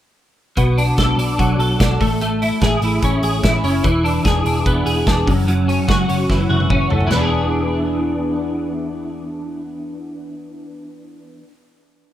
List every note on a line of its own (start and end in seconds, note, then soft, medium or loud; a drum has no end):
0.57 0.91 B1 medium
0.57 2.04 B2 medium
0.57 kick medium
0.57 closed hi-hat medium
0.78 1.17 D4 medium
0.78 open hi-hat medium
0.98 1.15 B1 medium
0.98 1.59 A4 medium
0.98 kick medium
0.98 snare medium
0.98 closed hi-hat medium
1.17 1.34 B1 medium
1.17 1.79 D4 soft
1.17 open hi-hat medium
1.39 1.56 B1 medium
1.39 2.00 F#3 medium
1.39 kick medium
1.39 closed hi-hat medium
1.58 1.75 B1 medium
1.58 2.04 A4 medium
1.58 open hi-hat medium
1.80 1.97 B1 medium
1.80 2.04 D4 medium
1.80 kick loud
1.80 snare loud
1.80 closed hi-hat medium
2.00 2.50 A1 medium
2.00 2.20 A3 medium
2.00 kick medium
2.00 open hi-hat medium
2.21 3.84 A3 medium
2.21 closed hi-hat medium
2.42 2.83 E4 soft
2.42 open hi-hat medium
2.61 2.78 A1 medium
2.61 3.23 G#4 medium
2.61 kick loud
2.61 snare medium
2.61 closed hi-hat medium
2.82 2.98 A1 medium
2.82 3.43 E4 medium
2.82 open hi-hat medium
3.02 3.19 A1 medium
3.02 3.63 C#4 medium
3.02 kick loud
3.02 closed hi-hat medium
3.22 3.39 A1 medium
3.22 3.89 G#4 medium
3.22 open hi-hat medium
3.43 3.60 A1 medium
3.43 4.04 E4 medium
3.43 kick loud
3.43 snare loud
3.43 closed hi-hat medium
3.63 3.80 F#1 medium
3.63 3.88 C#4 medium
3.63 open hi-hat medium
3.84 4.18 E1 loud
3.84 5.50 E3 medium
3.84 kick loud
3.84 closed hi-hat medium
4.04 4.45 D4 medium
4.04 open hi-hat medium
4.25 4.42 E1 medium
4.25 4.85 G#4 medium
4.25 kick loud
4.25 snare medium
4.25 closed hi-hat medium
4.45 4.62 E1 medium
4.45 5.06 D4 soft
4.45 open hi-hat medium
4.66 4.83 E1 medium
4.66 5.31 B3 medium
4.66 kick loud
4.66 closed hi-hat medium
4.86 5.03 E1 medium
4.86 5.31 G#4 medium
4.86 open hi-hat medium
5.06 5.23 E1 medium
5.06 5.31 D4 medium
5.06 kick loud
5.06 snare loud
5.06 closed hi-hat medium
5.27 5.77 F#1 medium
5.27 5.46 F#2 medium
5.27 kick loud
5.27 open hi-hat medium
5.47 7.10 F#2 medium
5.47 closed hi-hat medium
5.68 6.08 C#4 medium
5.68 open hi-hat medium
5.88 6.05 F#1 medium
5.88 6.48 F#4 medium
5.88 kick loud
5.88 snare loud
5.88 closed hi-hat medium
6.09 6.26 F#1 loud
6.09 6.69 C#4 medium
6.09 open hi-hat medium
6.29 6.46 F#1 medium
6.29 7.06 E3 medium
6.29 kick medium
6.29 snare soft
6.50 6.66 F#1 medium
6.50 7.15 F#4 medium
6.50 high tom medium
6.60 high tom medium
6.70 6.87 F#1 medium
6.70 7.15 C#4 medium
6.70 kick loud
6.70 mid tom medium
6.90 7.07 F#1 medium
6.90 7.12 A3 soft
6.90 floor tom medium
7.00 floor tom medium
7.07 11.42 E1 medium
7.07 11.42 E3 medium
7.07 floor tom medium
7.07 splash medium
7.11 11.47 B3 medium
7.11 snare medium
7.16 11.52 D4 medium
7.16 11.55 G#4 medium